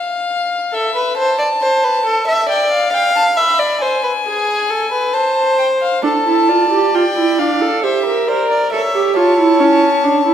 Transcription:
Already playing: F5
0.73 A4 E5
0.95 B4
1.17 C5 A5
1.39 D5
1.61 C5
1.84 B4
2.05 A4
2.27 E5
2.49 D5 G5
2.72 F5
2.92 F5 G5
3.16 A5
3.37 E5 B5
3.59 D5
3.81 C5 G#5
4.03 B4
4.25 G#4
4.70 A4
4.92 B4
5.13 C5 A5
5.58 G5
5.82 F5
6.03 D4 A4 A5
6.25 E4
6.49 F4 D5
6.71 G4
6.95 F4 G5
7.16 E4
7.39 D4 F5
7.62 A4
7.84 G4 C5 E5
8.06 A#4
8.28 A#4 C5 D5
8.50 D5
8.72 A4 C#5 E5
8.95 G4
9.16 F4 C#5 A5
9.39 E4
9.60 C#4
10.04 D4
10.25 E4

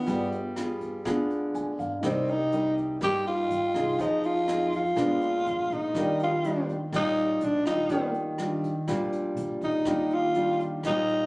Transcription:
Already playing: B3 F4
0.05 G1 G3 F4 G#4, kick, closed hi-hat
0.09 B4 D5
0.32 closed hi-hat
0.56 B3 F4 G#4, cross-stick, closed hi-hat
0.81 kick, closed hi-hat
1.05 D2 D3 B3 F4 G#4, kick, cross-stick, closed hi-hat
1.30 closed hi-hat
1.54 D2 G#5, closed hi-hat
1.79 G2 F5, kick, closed hi-hat
2.01 C2 C3 G3 A#3 D#4 G4 A#4, kick, cross-stick, closed hi-hat
2.06 C4 D5
2.28 D#4, closed hi-hat
2.52 G3 A#3 D#4, closed hi-hat
2.77 kick, closed hi-hat
3.01 G2 G3 A#3 D#4 G4, kick, cross-stick, closed hi-hat
3.26 F4, closed hi-hat
3.50 G2, closed hi-hat
3.74 C2 C4 D#4 G#4, kick, cross-stick, closed hi-hat
3.98 F2 F3 D#4 G#4 C5, kick, closed hi-hat
4.03 D#5
4.23 F4, closed hi-hat
4.48 C4 D#4 G#4, cross-stick, closed hi-hat
4.72 F4, kick, closed hi-hat
4.94 A#1 A#2 G#3 B3 D4 F4 G#4, kick, cross-stick, closed hi-hat
4.99 B4 D5
5.21 closed hi-hat
5.46 F2, closed hi-hat
5.70 A#1 D#4, kick, closed hi-hat
5.93 D#2 D#3 G3 D4 F4 G4 A#4, kick, cross-stick, closed hi-hat
5.99 D5
6.19 closed hi-hat
6.23 F4
6.44 G3 D4 F4, closed hi-hat
6.68 kick, closed hi-hat
6.93 A#1 A#2 G3 D#4 F4, kick, cross-stick, closed hi-hat
7.17 closed hi-hat
7.41 A#1 D4, closed hi-hat
7.65 D#2 G3 D#4 F4, kick, cross-stick, closed hi-hat
7.88 D#2 D#3 F4 G4 A#4, kick, closed hi-hat
7.94 D5
8.14 closed hi-hat
8.38 G3 D4 F4, cross-stick, closed hi-hat
8.63 kick, closed hi-hat
8.88 A#1 A#2 G3 D4 F4, kick, cross-stick, closed hi-hat
9.12 closed hi-hat
9.36 A#1, closed hi-hat
9.61 D#2 D#4, kick, closed hi-hat
9.85 D#2 D#3 G3 D4 F4, kick, cross-stick, closed hi-hat
10.10 closed hi-hat
10.14 F4
10.35 G3 D4 F4, closed hi-hat
10.59 kick, closed hi-hat
10.83 A#1 A#2 G3 D#4 F4, kick, cross-stick, closed hi-hat
11.08 closed hi-hat

